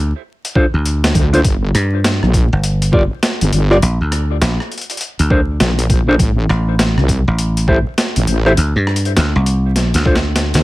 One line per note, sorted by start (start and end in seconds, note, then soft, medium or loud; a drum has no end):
0.00 0.12 D2 loud
0.45 closed hi-hat medium
0.55 0.65 D4 medium
0.55 0.65 F4 medium
0.55 0.65 A4 medium
0.55 0.65 C5 medium
0.55 kick loud
0.74 1.13 D2 medium
0.86 closed hi-hat medium
1.04 snare loud
1.04 closed hi-hat medium
1.15 1.43 D2 loud
1.15 kick loud
1.15 closed hi-hat medium
1.33 1.39 D4 medium
1.33 1.39 F4 medium
1.33 1.39 A4 medium
1.33 1.39 C5 loud
1.33 closed hi-hat soft
1.44 1.72 G1 loud
1.44 kick loud
1.44 closed hi-hat medium
1.75 2.20 G2 loud
1.75 cross-stick medium
1.75 closed hi-hat medium
2.04 snare loud
2.04 closed hi-hat medium
2.23 2.49 A#1 loud
2.23 cross-stick soft
2.34 kick loud
2.34 closed hi-hat medium
2.53 2.92 G1 medium
2.64 closed hi-hat medium
2.82 closed hi-hat medium
2.93 3.09 G1 medium
2.93 3.02 F4 medium
2.93 3.02 G4 medium
2.93 3.02 A#4 medium
2.93 3.02 D5 medium
2.93 kick loud
3.23 snare loud
3.23 closed hi-hat medium
3.41 3.51 G1 medium
3.41 closed hi-hat medium
3.52 3.80 G1 medium
3.52 closed hi-hat medium
3.71 3.76 F4 medium
3.71 3.76 G4 medium
3.71 3.76 A#4 medium
3.71 3.76 D5 loud
3.71 cross-stick soft
3.82 3.98 A#1 loud
3.82 closed hi-hat medium
4.01 4.40 D2 loud
4.12 cross-stick medium
4.12 closed hi-hat medium
4.42 4.57 A#1 loud
4.42 snare loud
4.42 closed hi-hat medium
4.60 cross-stick soft
4.72 closed hi-hat soft
4.78 closed hi-hat soft
4.81 closed hi-hat soft
4.90 closed hi-hat soft
4.97 closed hi-hat medium
5.01 closed hi-hat medium
5.19 5.59 D2 medium
5.19 closed hi-hat medium
5.30 5.40 D4 medium
5.30 5.40 A4 medium
5.30 5.40 A#4 medium
5.30 5.40 C5 medium
5.30 kick loud
5.60 6.18 A#1 loud
5.60 snare loud
5.60 closed hi-hat medium
5.79 closed hi-hat medium
5.90 kick loud
5.90 closed hi-hat medium
6.08 6.14 D4 medium
6.08 6.14 A4 medium
6.08 6.14 A#4 medium
6.08 6.14 C5 medium
6.19 6.47 A1 loud
6.19 kick loud
6.19 closed hi-hat medium
6.50 6.95 A1 loud
6.50 cross-stick medium
6.79 snare loud
6.79 closed hi-hat medium
6.97 7.24 C2 loud
6.97 cross-stick soft
7.08 kick loud
7.08 closed hi-hat medium
7.28 7.67 A1 medium
7.38 closed hi-hat medium
7.57 closed hi-hat medium
7.68 7.84 A1 medium
7.68 7.77 E4 medium
7.68 7.77 G4 medium
7.68 7.77 A4 medium
7.68 7.77 C5 medium
7.68 kick loud
7.98 snare loud
7.98 closed hi-hat medium
8.16 8.26 A1 loud
8.16 closed hi-hat medium
8.27 8.56 A1 medium
8.27 closed hi-hat medium
8.46 8.52 E4 medium
8.46 8.52 G4 medium
8.46 8.52 A4 medium
8.46 8.52 C5 loud
8.46 cross-stick soft
8.57 8.73 D2 loud
8.57 closed hi-hat medium
8.76 9.15 G2 loud
8.87 cross-stick medium
8.96 closed hi-hat medium
9.05 closed hi-hat soft
9.17 9.33 D2 loud
9.17 snare loud
9.17 closed hi-hat medium
9.36 9.92 C2 loud
9.46 closed hi-hat medium
9.76 snare medium
9.76 closed hi-hat medium
9.94 10.51 D2 loud
9.94 snare medium
9.94 closed hi-hat medium
10.06 10.15 D4 medium
10.06 10.15 F4 medium
10.06 10.15 A4 medium
10.06 10.15 C5 medium
10.06 kick loud
10.16 snare medium
10.36 snare medium
10.36 closed hi-hat medium
10.54 10.63 D2 medium
10.54 snare loud
10.54 closed hi-hat medium